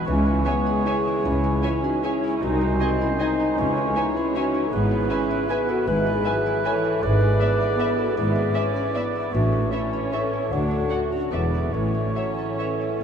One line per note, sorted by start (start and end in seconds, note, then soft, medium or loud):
0.00 0.65 G#4 soft
0.06 0.40 C#2 medium
0.06 1.24 C#3 medium
0.06 0.46 E3 medium
0.06 2.15 E3 medium
0.06 0.43 G#3 medium
0.06 0.44 C#4 medium
0.06 2.11 C#5 medium
0.06 2.11 G#5 soft
0.26 1.42 G#3 soft
0.45 0.86 G#3 medium
0.45 1.63 G#3 medium
0.45 0.89 B3 medium
0.45 0.53 C#5 soft
0.45 0.85 C#5 soft
0.45 0.53 E5 soft
0.45 0.54 G#5 soft
0.66 1.83 G#4 medium
0.86 1.25 E4 medium
0.86 1.27 G#4 medium
0.86 1.63 C#5 soft
0.86 0.95 C#5 soft
0.86 0.94 E5 soft
0.86 0.94 G#5 soft
1.07 2.22 E4 soft
1.25 1.57 C#2 medium
1.25 2.43 C#3 medium
1.25 1.84 C#4 medium
1.25 1.85 E4 medium
1.44 2.60 G#3 soft
1.63 2.02 C#4 medium
1.63 1.71 C#5 soft
1.63 2.03 C#5 soft
1.63 1.71 E5 soft
1.63 1.71 G#5 soft
1.84 2.04 D#4 medium
1.84 2.05 F#4 medium
1.84 3.00 G#4 medium
2.03 2.41 C#4 medium
2.03 2.42 E4 medium
2.03 2.42 G#4 medium
2.03 2.11 C#5 soft
2.03 2.44 C#5 soft
2.03 2.12 E5 soft
2.03 2.12 G#5 soft
2.24 2.44 E4 soft
2.42 2.74 C2 medium
2.42 3.59 C3 soft
2.42 3.59 D#3 medium
2.42 2.80 D#4 medium
2.42 3.01 D#4 medium
2.42 3.00 F#4 medium
2.42 3.60 C5 medium
2.42 4.68 G#5 medium
2.61 3.76 G#3 soft
2.80 3.19 C4 medium
2.80 2.88 D#5 soft
2.80 3.20 D#5 medium
2.80 2.89 G#5 soft
3.01 3.20 C#4 medium
3.01 3.10 E4 medium
3.01 4.15 G#4 soft
3.20 3.76 C4 medium
3.20 3.57 D#4 medium
3.20 3.79 D#4 medium
3.20 3.28 D#5 soft
3.20 3.59 D#5 soft
3.20 3.28 G#5 soft
3.40 3.59 D#4 soft
3.58 3.90 C#2 medium
3.58 4.74 C#3 medium
3.58 4.72 E3 medium
3.58 3.96 C#4 medium
3.58 4.72 C#5 medium
3.76 7.04 G#3 soft
3.76 3.95 A3 medium
3.76 3.98 C#4 medium
3.96 4.35 G#3 medium
3.96 4.16 B3 medium
3.96 4.19 D#4 medium
3.96 4.04 C#5 soft
3.96 4.34 C#5 soft
3.96 4.04 E5 soft
3.96 4.04 G#5 soft
4.16 4.35 C#4 medium
4.16 4.38 E4 medium
4.16 8.06 G#4 soft
4.35 4.72 C#4 medium
4.35 4.72 D#4 medium
4.35 4.69 F#4 medium
4.35 4.44 C#5 soft
4.35 4.74 C#5 soft
4.35 4.44 E5 soft
4.35 4.44 G#5 soft
4.54 5.29 E4 soft
4.67 4.75 A4 medium
4.72 5.04 G#1 medium
4.72 5.04 G#2 medium
4.72 5.86 G#2 medium
4.72 5.83 E3 medium
4.72 5.09 B3 medium
4.72 5.49 E4 medium
4.72 5.52 G#4 medium
4.72 5.83 B4 medium
4.72 5.84 E5 medium
4.91 6.05 B3 soft
5.10 5.49 C#4 medium
5.10 5.18 B4 soft
5.10 5.49 B4 soft
5.10 5.18 E5 soft
5.10 5.18 G#5 soft
5.31 5.68 E4 medium
5.49 5.86 B3 medium
5.49 5.68 G#4 medium
5.49 6.24 B4 soft
5.49 5.58 B4 soft
5.49 5.72 B4 medium
5.49 5.59 E5 soft
5.49 5.57 G#5 soft
5.69 6.45 E4 soft
5.69 5.88 F#4 medium
5.69 5.87 A4 medium
5.87 6.19 G#1 medium
5.87 7.02 G#2 medium
5.87 6.19 G#2 medium
5.87 7.00 E3 medium
5.87 6.25 G#3 medium
5.87 6.65 G#4 medium
5.87 7.04 B4 medium
5.87 6.37 B4 medium
5.87 7.00 E5 medium
6.06 9.35 B3 soft
6.25 6.65 F#3 medium
6.25 6.33 B4 soft
6.25 6.64 B4 soft
6.25 6.33 E5 medium
6.25 6.34 G#5 soft
6.46 6.83 E4 medium
6.65 7.01 E3 medium
6.65 7.02 A4 medium
6.65 6.73 B4 soft
6.65 7.39 B4 soft
6.65 7.04 C#5 medium
6.65 6.73 E5 soft
6.65 6.74 G#5 medium
6.84 7.97 E4 soft
7.02 7.34 G#1 medium
7.02 7.34 G#2 medium
7.02 8.16 G#2 medium
7.02 8.15 E3 medium
7.02 7.40 G#3 medium
7.02 7.99 G#4 medium
7.02 8.01 B4 medium
7.02 8.17 D5 medium
7.02 8.14 E5 medium
7.21 8.34 D4 soft
7.39 8.15 B3 medium
7.39 7.78 B4 soft
7.39 7.49 D5 soft
7.39 7.48 E5 soft
7.39 7.49 E5 soft
7.60 8.75 D5 soft
7.80 8.55 B4 soft
7.80 7.88 D5 soft
7.80 7.88 E5 soft
7.98 9.14 E4 soft
7.98 8.16 F#4 medium
7.98 8.17 A4 medium
8.16 8.48 G#1 medium
8.16 9.35 G#2 medium
8.16 8.48 G#2 medium
8.16 9.31 E3 medium
8.16 8.54 B3 medium
8.16 8.74 E4 medium
8.16 8.75 G#4 medium
8.16 9.35 D5 medium
8.16 9.05 E5 medium
8.35 9.35 D4 soft
8.54 8.95 C#4 medium
8.54 8.95 B4 soft
8.54 8.63 D5 soft
8.54 8.63 E5 soft
8.76 9.35 D5 soft
8.95 9.34 B3 medium
8.95 9.35 B4 soft
8.95 9.03 D5 soft
8.95 9.03 E5 soft
9.15 10.32 E4 soft
9.33 9.66 A1 medium
9.33 9.66 A2 medium
9.33 10.53 A2 soft
9.33 9.71 E3 medium
9.33 9.72 A3 medium
9.33 9.70 D4 medium
9.33 9.74 F#4 medium
9.33 9.71 C#5 soft
9.33 9.72 E5 soft
9.53 10.70 C#4 soft
9.72 10.12 E3 soft
9.72 10.50 C#4 medium
9.72 10.13 C#4 medium
9.72 10.15 E4 medium
9.72 10.12 A4 soft
9.72 10.12 C#5 soft
9.72 9.81 C#5 soft
9.72 9.80 E5 soft
9.72 9.81 E5 soft
9.72 10.12 E5 soft
9.93 11.11 C#5 soft
10.13 10.50 E3 soft
10.13 10.90 A4 soft
10.13 10.52 A4 medium
10.13 10.21 C#5 soft
10.13 10.54 C#5 medium
10.13 10.51 C#5 medium
10.13 10.21 E5 soft
10.13 10.54 E5 soft
10.33 10.53 E4 soft
10.51 10.83 D2 soft
10.51 10.84 D2 medium
10.51 11.02 D3 soft
10.51 11.35 D3 soft
10.51 10.90 D4 medium
10.51 11.11 F#4 medium
10.51 11.14 A4 medium
10.51 11.02 C#5 soft
10.51 11.03 F#5 soft
10.71 11.35 C#4 soft
10.90 11.33 F#4 soft
10.90 11.35 A4 soft
10.90 10.98 C#5 soft
10.90 10.98 D5 soft
10.90 10.99 F#5 soft
11.12 11.33 D4 soft
11.12 11.35 F#4 medium
11.12 11.35 C#5 soft
11.32 11.67 E1 soft
11.32 11.67 E2 soft
11.32 11.70 E3 soft
11.32 11.76 E3 soft
11.32 11.74 B3 soft
11.32 11.74 E4 soft
11.32 11.74 G#4 soft
11.32 11.40 B4 soft
11.32 11.40 D5 soft
11.32 11.75 D5 soft
11.32 11.41 E5 soft
11.32 11.71 E5 soft
11.54 12.80 E4 soft
11.54 11.76 D5 soft
11.74 12.09 A1 soft
11.74 12.99 A2 soft
11.74 12.09 A2 soft
11.74 12.11 E3 soft
11.74 13.04 C#4 soft
11.74 13.04 E4 soft
11.74 13.04 A4 medium
11.74 13.04 C#5 soft
11.74 13.04 E5 soft
11.95 13.04 A3 soft
12.16 12.62 F#3 soft
12.16 12.24 C#5 soft
12.16 12.59 C#5 soft
12.16 12.24 E5 soft
12.39 13.04 A4 soft
12.59 13.01 E3 soft
12.59 13.04 C#5 soft
12.59 12.69 C#5 soft
12.59 12.67 E5 soft
12.81 13.04 E4 soft
13.01 13.04 A2 soft